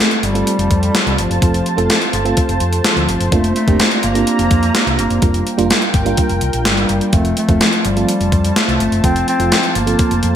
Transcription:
Already playing: A3 C4 F4 G4 A4 C5 A5
0.11 closed hi-hat
0.23 G1 G3, closed hi-hat
0.34 A3 C4 F4 A4, closed hi-hat
0.47 closed hi-hat
0.59 F1, closed hi-hat
0.71 F2, kick, closed hi-hat
0.83 closed hi-hat
0.95 snare, closed hi-hat
1.07 C2, closed hi-hat
1.18 G1 F3, closed hi-hat
1.30 F#1, closed hi-hat
1.41 F1 A3 C4 F4 A4, kick, closed hi-hat
1.54 closed hi-hat
1.66 closed hi-hat
1.77 F1 A3 C4 F4 A4, closed hi-hat
1.90 snare, closed hi-hat
2.02 closed hi-hat
2.13 G1, closed hi-hat
2.25 A3 C4 F4 A4, closed hi-hat
2.37 kick, closed hi-hat
2.49 F1, closed hi-hat
2.60 F2, closed hi-hat
2.73 closed hi-hat
2.84 F3, snare, closed hi-hat
2.97 D2, closed hi-hat
3.08 G1, closed hi-hat
3.20 F#1, closed hi-hat
3.32 F1 A3 A#3 C4 D4 F4 A#5, kick, closed hi-hat
3.44 closed hi-hat
3.56 A3, closed hi-hat
3.67 F1 A#3 C4 D4 G4, kick, closed hi-hat
3.80 snare, closed hi-hat
3.91 closed hi-hat
4.03 G1 A#3, closed hi-hat
4.15 A#3 C4 D4 F4, closed hi-hat
4.27 closed hi-hat
4.39 F1, closed hi-hat
4.51 F2, kick, closed hi-hat
4.63 closed hi-hat
4.75 snare, closed hi-hat
4.87 C2, closed hi-hat
4.99 G1 A#3, closed hi-hat
5.10 F#1, closed hi-hat
5.22 F1 G3 A#3 D4 F4 A#4 G5, kick, closed hi-hat
5.34 closed hi-hat
5.47 closed hi-hat
5.58 F1 G3 A#3 D4 F4, closed hi-hat
5.70 snare, closed hi-hat
5.82 closed hi-hat
5.94 G1, kick, closed hi-hat
6.05 G3 A#3 D4 F4, closed hi-hat
6.17 kick, closed hi-hat
6.29 F1, closed hi-hat
6.41 C2, closed hi-hat
6.53 A#1, closed hi-hat
6.65 G1 G3, snare, closed hi-hat
6.77 closed hi-hat
6.89 F#1, closed hi-hat
7.01 closed hi-hat
7.13 F1 F3 A3 C4 F4 C5 A5, kick, closed hi-hat
7.25 closed hi-hat
7.37 A3, closed hi-hat
7.49 F1 F3 A3 C4 F4, kick, closed hi-hat
7.61 snare, closed hi-hat
7.73 closed hi-hat
7.85 G1 G3, closed hi-hat
7.96 F3 A3 C4 F4, closed hi-hat
8.09 closed hi-hat
8.21 F1, closed hi-hat
8.32 F2, kick, closed hi-hat
8.45 closed hi-hat
8.56 A3, snare, closed hi-hat
8.68 C2, closed hi-hat
8.80 G1, closed hi-hat
8.92 F#1, closed hi-hat
9.03 F1 F3 A3 C4 F4, kick, closed hi-hat
9.16 closed hi-hat
9.28 C4, closed hi-hat
9.39 F1 F3 A3 C4 F4, closed hi-hat
9.52 snare, closed hi-hat
9.63 closed hi-hat
9.75 G1 A#3, closed hi-hat
9.86 F3 C4 F4 A4, closed hi-hat
9.99 kick, closed hi-hat
10.11 F1, closed hi-hat
10.23 F2, closed hi-hat

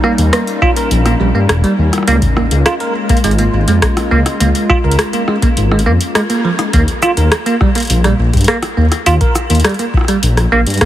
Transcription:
Already playing: G3 A#3 C#4 D#4 A#4
0.04 A#3, cross-stick
0.18 D#2, closed hi-hat
0.33 A#3, cross-stick, closed hi-hat
0.47 closed hi-hat
0.62 F4, kick, cross-stick
0.76 A#4, closed hi-hat
0.91 A#1, closed hi-hat
1.06 A#3, cross-stick, closed hi-hat
1.20 A#1 G3
1.35 G2 A#3
1.49 kick, cross-stick, closed hi-hat
1.52 kick
1.54 kick
1.57 kick
1.59 kick
1.61 G3, kick, closed hi-hat
1.78 D#2
1.93 cross-stick, closed hi-hat
1.98 cross-stick
2.03 cross-stick
2.07 C#2 G#3 A#3, closed hi-hat
2.22 kick, closed hi-hat
2.26 kick
2.29 kick
2.33 kick
2.37 A#3, kick, cross-stick
2.40 kick
2.44 kick
2.48 C#2, kick, closed hi-hat
2.66 F4, cross-stick, closed hi-hat
2.78 F4 A#4, closed hi-hat
3.09 A#3, kick, closed hi-hat
3.17 closed hi-hat
3.24 G#1 G#3, closed hi-hat
3.31 closed hi-hat
3.38 A#3, closed hi-hat
3.53 G#1
3.68 F2 G#3, closed hi-hat
3.82 kick, cross-stick, closed hi-hat
3.97 cross-stick, closed hi-hat
4.11 C#2 A#3
4.26 cross-stick, closed hi-hat
4.40 C#2 A#3, closed hi-hat
4.55 closed hi-hat
4.70 F4, kick, cross-stick
4.84 C#2 A#4
4.91 closed hi-hat
4.99 cross-stick, closed hi-hat
5.13 A#3, closed hi-hat
5.28 G#3, cross-stick
5.42 A#3, kick, closed hi-hat
5.57 G#1, closed hi-hat
5.72 G#3, cross-stick
5.79 closed hi-hat
5.86 F2 A#3
6.01 closed hi-hat
6.15 G#3, cross-stick, closed hi-hat
6.30 A#3, closed hi-hat
6.45 F3
6.59 cross-stick, closed hi-hat
6.73 D#2 A#3, kick, closed hi-hat
6.88 closed hi-hat
7.02 F4, cross-stick, cabasa
7.17 D#2 A#4, closed hi-hat
7.32 cross-stick, closed hi-hat
7.46 A#3, closed hi-hat
7.61 G3, kick, cross-stick
7.75 A#3, closed hi-hat
7.78 closed hi-hat
7.80 closed hi-hat
7.83 closed hi-hat
7.85 closed hi-hat
7.87 closed hi-hat
7.90 A#1, closed hi-hat
8.04 G3, cross-stick, closed hi-hat
8.19 A#1
8.33 G2, kick, closed hi-hat
8.37 closed hi-hat
8.41 closed hi-hat
8.44 cross-stick, closed hi-hat
8.48 A#3, closed hi-hat
8.63 cross-stick, closed hi-hat
8.77 D#2 A#3
8.92 cross-stick, closed hi-hat
9.06 D#2 F4, closed hi-hat
9.21 A#4, kick, closed hi-hat
9.35 cross-stick, cabasa
9.50 D#2 A#3, closed hi-hat
9.55 closed hi-hat
9.60 closed hi-hat
9.64 G3, cross-stick, closed hi-hat
9.69 closed hi-hat
9.74 closed hi-hat
9.79 A#3, closed hi-hat
9.94 kick, cross-stick
10.01 cross-stick
10.05 G3, cross-stick, closed hi-hat
10.23 A#1, closed hi-hat
10.37 cross-stick, closed hi-hat
10.52 A#1 A#3
10.67 G2, closed hi-hat
10.70 closed hi-hat
10.74 closed hi-hat
10.78 A#3, cross-stick, closed hi-hat
10.81 kick, closed hi-hat

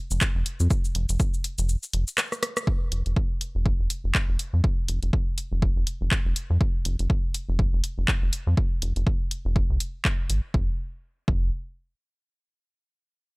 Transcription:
0.11 F1, shaker
0.21 kick, clap, shaker
0.35 F1
0.46 closed hi-hat
0.60 F2, shaker
0.70 kick, shaker
0.85 shaker
0.95 F1, closed hi-hat
1.09 F1, closed hi-hat, shaker
1.20 kick, shaker
1.34 shaker
1.44 closed hi-hat
1.58 F1, closed hi-hat, shaker
1.69 shaker
1.83 shaker
1.93 F1, closed hi-hat
2.08 shaker
2.18 cross-stick, clap, shaker
2.32 cross-stick, shaker
2.43 cross-stick, closed hi-hat
2.57 cross-stick, shaker
2.67 kick
2.92 F1, closed hi-hat
3.06 F1, closed hi-hat
3.16 kick
3.41 closed hi-hat
3.55 F1
3.66 kick
3.80 F1
3.90 closed hi-hat
4.04 F1
4.15 kick, clap
4.29 F1
4.39 closed hi-hat
4.53 F2
4.64 kick
4.88 F1, closed hi-hat
5.03 F1, closed hi-hat
5.13 kick
5.38 closed hi-hat
5.52 F1
5.62 kick
5.76 F1
5.87 closed hi-hat
6.01 F1
6.11 kick, clap
6.25 F1
6.36 closed hi-hat
6.50 F2
6.61 kick
6.85 F1, closed hi-hat
6.99 F1, closed hi-hat
7.10 kick
7.34 closed hi-hat
7.49 F1
7.59 kick
7.73 F1
7.84 closed hi-hat
7.98 F1
8.08 kick, clap
8.22 F1
8.33 closed hi-hat
8.47 F2
8.57 kick
8.82 F1, closed hi-hat
8.96 F1, closed hi-hat
9.07 kick
9.31 closed hi-hat
9.45 F1
9.56 kick
9.70 C2
9.80 closed hi-hat
10.05 kick, clap
10.30 G#1, closed hi-hat
10.54 F1, kick
11.28 F1, kick

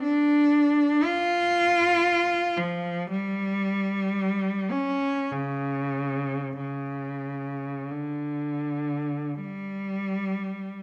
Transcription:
0.03 D4
1.04 F4
2.57 F3
3.10 G3
4.71 C#4
5.32 C#3
6.59 C#3
7.91 D3
9.41 G3

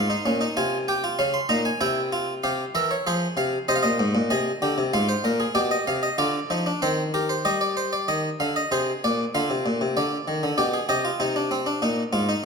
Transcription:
Already playing: G#2 C6
0.10 D#4
0.26 A#2 C#4
0.41 D#4
0.57 C3 F4 G#5
0.88 G4 G5
1.04 F4
1.19 C#3 C#4 F5
1.34 C6
1.49 A#2 D#4 A#5
1.65 G#5
1.81 C3 E4 G5
2.13 F4
2.44 C3 G4 F5
2.75 E3 A#4 E5
2.91 C#5
3.07 F3 G#4 C5
3.37 C3 F5
3.68 C3 C5 D#5
3.76 F5
3.83 A#2 D#5
3.99 G#2
4.15 A#2
4.30 C3 G#4 D#5
4.62 D3 G4
4.78 C3
4.93 G#2 F4 F5
5.09 C5
5.24 A#2 A#4
5.40 G#4
5.55 B2 G4 D5
5.71 D#5
5.87 C3 F5
6.03 D#5
6.18 D3 F4 D5
6.50 F3 D#4
6.66 D4
6.82 D#3 C4 C5
7.14 G4 A#4
7.29 C5
7.45 G3 G4 D#5
7.61 D5
7.77 C5
7.93 D5
8.08 D#3 D#5
8.40 D3 F5
8.56 D#5
8.72 C3 G#4 C5
9.04 A#2 D5
9.35 D3 F4 F5
9.50 C3
9.66 A#2
9.81 C3
9.97 D3 D5
10.28 D#3
10.43 D3
10.58 B2 G4 D5
10.74 G#4
10.89 C3 G4 D#5
11.05 F4
11.20 C3 D#4
11.36 D4
11.51 C4
11.66 D4
11.82 A#2 D#4
12.13 G#2 F4
12.29 D#4

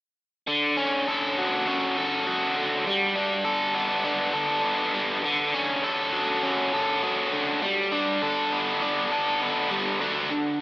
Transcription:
0.47 D3
0.77 C#4
1.07 A4
1.38 F#4
1.68 C#4
1.97 A4
2.27 F#4
2.56 D3
2.87 G3
3.15 D4
3.45 A4
3.75 B3
4.04 D4
4.34 A4
4.63 B3
4.94 G3
5.24 D3
5.54 C#4
5.84 A4
6.12 F#4
6.43 C#4
6.73 A4
7.03 F#4
7.33 D3
7.63 G3
7.92 D4
8.23 A4
8.52 B3
8.82 D4
9.12 A4
9.41 B3
9.71 G3
10.00 D3 D4 F#4
10.30 D3 D4

